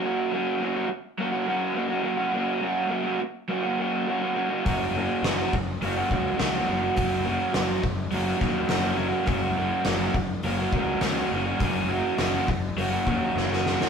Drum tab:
HH |----------------|----------------|o---o---o---o---|o---o---o---o---|
SD |----------------|----------------|----o-------o---|----o-----o-o---|
BD |----------------|----------------|o-----o---o-----|o-----o---o-----|

HH |o---o---o---o---|o---o---o-------|
SD |----o-------o---|----o-------oooo|
BD |o-----o---o-----|o-----o---o-----|